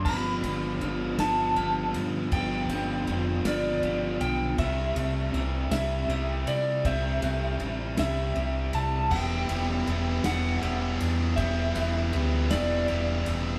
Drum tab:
CC |x-----|------|------|------|
RD |-xxxxx|xxxxxx|xxxxxx|xxxxxx|
SD |---o--|---o--|---o--|---o--|
BD |o-----|o-----|o-----|o-----|

CC |x-----|------|
RD |-xxxxx|xxxxxx|
SD |---o--|---o--|
BD |o-----|o-----|